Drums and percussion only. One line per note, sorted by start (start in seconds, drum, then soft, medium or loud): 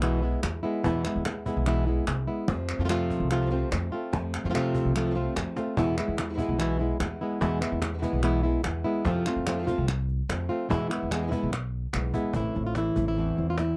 0.02 clap medium
0.43 cajon slap loud
0.43 clap medium
0.84 cajon bass loud
1.05 clap medium
1.25 cajon slap medium
1.25 clap medium
1.46 cajon bass medium
1.66 clap medium
2.07 cajon slap medium
2.07 clap medium
2.48 cajon bass medium
2.48 cajon slap soft
2.69 clap medium
2.89 cajon slap medium
2.89 clap medium
3.10 cajon bass medium
3.31 clap medium
3.72 cajon slap loud
3.72 clap medium
4.13 cajon bass medium
4.13 cajon slap soft
4.34 clap medium
4.55 cajon slap medium
4.55 clap medium
4.75 cajon bass medium
4.96 clap medium
5.36 cajon slap loud
5.36 clap medium
5.57 cajon slap medium
5.77 cajon bass loud
5.98 clap medium
6.18 cajon slap medium
6.18 clap medium
6.38 cajon bass medium
6.60 clap medium
7.00 cajon slap loud
7.00 clap medium
7.41 cajon bass medium
7.41 cajon slap soft
7.62 clap medium
7.82 cajon slap loud
7.82 clap medium
8.02 cajon bass medium
8.23 clap medium
8.64 cajon slap medium
8.64 clap medium
9.05 cajon bass loud
9.05 cajon slap soft
9.26 clap medium
9.47 cajon slap loud
9.47 clap medium
9.67 cajon bass medium
9.88 clap medium
10.09 cajon slap soft
10.29 cajon slap loud
10.29 clap medium
10.70 cajon bass medium
10.91 clap medium
11.11 cajon slap medium
11.11 clap medium
11.32 cajon bass medium
11.53 clap medium
11.93 cajon slap medium
11.93 clap medium
12.14 cajon bass medium
12.33 cajon bass medium
12.55 cajon slap soft
12.75 cajon slap medium
12.96 cajon bass medium
13.37 cajon slap soft
13.58 cajon slap medium